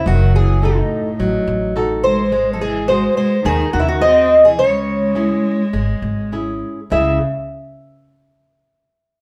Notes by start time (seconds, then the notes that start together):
0.06 F#1 D#3 F#3 F#4
0.36 E3 G#4
0.62 D#4 F#4 A4
0.67 A2
1.20 A1 F#3
1.47 A1
1.76 D#4 F#4 A4
2.04 G#3 C5
2.32 G#1 G#3
2.53 F#3 A4
2.60 E3 G#4
2.88 G#3 F#4 G#4 C5
3.16 G#3 C5
3.44 D#2 D#3 G#4
3.72 D#2 D#3 F#4
3.80 C#3 E4
3.88 D#3 F#4
4.01 C4 F#4 G#4 C5 D#5
4.45 E3 G#4
4.59 C#2 C#3 G#3 C#5
5.15 C#4 E4 G#4
5.73 G#1 G#3
6.02 G#1
6.32 C#4 E4 G#4
6.90 C#2 C#3 G#3 C#4 E4 G#4 E5